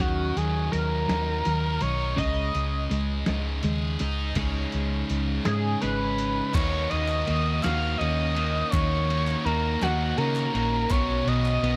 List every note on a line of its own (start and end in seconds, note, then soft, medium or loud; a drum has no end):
0.00 0.32 D#2 medium
0.00 0.34 D#3 medium
0.00 1.82 D#3 medium
0.00 0.34 F#3 medium
0.00 0.35 C#4 medium
0.00 0.38 F#4 medium
0.00 kick loud
0.00 closed hi-hat medium
0.36 0.68 D#2 medium
0.36 0.69 D#3 medium
0.36 0.71 F#3 medium
0.36 0.69 F#3 medium
0.36 0.71 G#4 medium
0.36 closed hi-hat medium
0.72 1.05 D#2 medium
0.72 1.05 D#3 medium
0.72 1.05 F#3 medium
0.72 2.18 F#3 medium
0.72 1.83 A#4 loud
0.72 closed hi-hat medium
1.08 1.41 D#2 medium
1.08 1.41 D#3 medium
1.08 1.42 F#3 medium
1.08 1.81 D#4 medium
1.08 snare loud
1.08 closed hi-hat medium
1.45 1.78 D#2 medium
1.45 1.78 D#3 medium
1.45 1.79 F#3 medium
1.45 2.19 A#4 medium
1.45 closed hi-hat medium
1.81 2.14 B1 medium
1.81 2.14 D#3 medium
1.81 2.15 F#3 medium
1.81 2.21 D#4 medium
1.81 2.18 C#5 loud
1.81 closed hi-hat medium
2.16 2.50 C#2 medium
2.16 2.52 C#3 medium
2.16 4.00 C#3 medium
2.16 2.52 G#3 medium
2.16 2.52 C#4 loud
2.16 2.96 D#5 loud
2.16 kick loud
2.16 closed hi-hat medium
2.54 2.87 C#2 medium
2.54 2.87 C#3 medium
2.54 2.91 G#3 medium
2.54 closed hi-hat medium
2.90 3.23 C#2 medium
2.90 3.23 C#3 medium
2.90 3.24 G#3 medium
2.90 4.36 G#3 medium
2.90 closed hi-hat medium
3.26 3.60 C#2 medium
3.26 3.60 C#3 medium
3.26 3.61 G#3 medium
3.26 4.00 D#4 medium
3.26 snare loud
3.26 closed hi-hat medium
3.63 3.95 D#2 medium
3.63 3.96 C#3 medium
3.63 3.97 G#3 medium
3.63 4.37 G#4 medium
3.63 closed hi-hat medium
3.99 4.32 C#2 medium
3.99 4.33 C#3 medium
3.99 4.33 G#3 medium
3.99 4.37 D#4 medium
3.99 closed hi-hat medium
4.35 4.65 C#2 medium
4.35 5.80 C#3 medium
4.35 5.80 G#3 medium
4.35 6.52 C#4 medium
4.35 5.80 C#4 medium
4.35 5.80 D#4 medium
4.35 6.53 D#4 medium
4.35 6.54 G#4 medium
4.35 5.81 G#4 medium
4.35 kick loud
4.35 closed hi-hat medium
4.35 crash loud
4.40 6.54 C#5 medium
4.72 5.02 C#2 medium
4.72 closed hi-hat medium
5.10 5.39 C#2 medium
5.10 closed hi-hat medium
5.45 5.75 G#2 medium
5.45 5.79 G#4 loud
5.45 snare loud
5.45 closed hi-hat medium
5.81 6.40 G#1 medium
5.81 6.52 C#3 medium
5.81 6.53 G#3 medium
5.81 6.53 C#4 medium
5.81 6.53 D#4 medium
5.81 6.54 G#4 medium
5.81 6.56 B4 loud
5.81 closed hi-hat medium
6.18 closed hi-hat medium
6.54 6.85 D#2 loud
6.54 7.27 D#3 medium
6.54 8.36 D#3 medium
6.54 6.93 A#3 medium
6.54 6.92 D#4 loud
6.54 6.90 F#4 loud
6.54 6.91 C#5 loud
6.54 kick loud
6.54 clap medium
6.54 crash loud
6.54 ride loud
6.90 7.23 D#2 medium
6.90 7.29 D#4 medium
6.90 7.30 F#4 medium
6.90 7.64 D#5 loud
6.90 ride medium
6.94 7.28 A#3 medium
7.09 clap medium
7.27 7.59 D#2 medium
7.27 7.98 D#3 medium
7.27 8.35 A#3 medium
7.27 7.66 A#3 medium
7.27 7.64 D#4 medium
7.27 7.63 F#4 medium
7.27 ride medium
7.62 7.95 D#2 medium
7.62 8.01 D#4 medium
7.62 8.03 F#4 medium
7.62 9.83 F#4 medium
7.62 7.99 F5 loud
7.62 snare loud
7.62 clap medium
7.62 ride loud
7.67 8.00 A#3 medium
7.98 8.62 D#2 medium
7.98 8.71 D#3 medium
7.98 8.38 A#3 medium
7.98 10.18 C#4 medium
7.98 8.72 D#5 loud
7.98 clap soft
7.98 ride medium
8.02 8.37 D#4 medium
8.02 8.36 F#4 medium
8.36 9.45 A#3 medium
8.36 8.72 A#3 medium
8.36 8.73 D#4 medium
8.36 8.75 F#4 medium
8.36 ride medium
8.71 9.34 D#2 medium
8.71 9.44 D#3 medium
8.71 10.54 D#3 medium
8.71 9.11 A#3 medium
8.71 9.46 C#5 loud
8.71 kick loud
8.71 clap loud
8.71 ride medium
8.75 9.10 D#4 medium
8.75 9.08 F#4 loud
9.09 9.45 A#3 medium
9.09 9.46 D#4 medium
9.09 9.48 F#4 medium
9.09 ride medium
9.27 clap medium
9.45 9.76 D#2 loud
9.45 10.16 D#3 medium
9.45 9.83 A#3 medium
9.45 10.53 A#3 medium
9.45 9.81 D#4 medium
9.45 9.81 F#4 medium
9.45 9.84 A#4 loud
9.45 ride medium
9.81 10.12 D#2 medium
9.81 10.18 A#3 medium
9.81 10.19 D#4 medium
9.81 10.21 F#4 medium
9.81 10.19 F#4 loud
9.81 11.76 F#4 medium
9.81 snare loud
9.81 clap medium
9.81 ride loud
10.17 10.49 C#3 medium
10.17 10.88 D#3 medium
10.17 10.56 A#3 medium
10.17 10.94 C#4 medium
10.17 10.54 D#4 medium
10.17 10.54 F#4 medium
10.17 10.92 A#4 loud
10.17 clap soft
10.17 ride medium
10.36 clap medium
10.54 10.85 A#1 medium
10.54 10.90 A#3 medium
10.54 10.89 D#4 medium
10.54 10.93 F#4 medium
10.54 ride medium
10.90 11.21 B1 loud
10.90 11.67 B2 loud
10.90 11.76 B2 medium
10.90 11.61 F#3 medium
10.90 11.29 B3 medium
10.90 11.27 C#4 loud
10.90 11.25 F#4 medium
10.90 11.21 C#5 loud
10.90 kick loud
10.90 clap medium
10.90 ride loud
11.21 11.29 C#5 medium
11.26 11.57 B1 medium
11.26 11.63 B3 medium
11.26 11.64 C#4 medium
11.26 11.65 F#4 medium
11.26 11.76 D#5 loud
11.26 ride medium
11.45 clap medium
11.62 11.76 B1 medium
11.62 11.76 F#3 medium
11.62 11.76 B3 medium
11.62 11.76 C#4 medium
11.62 11.76 F#4 medium
11.62 ride medium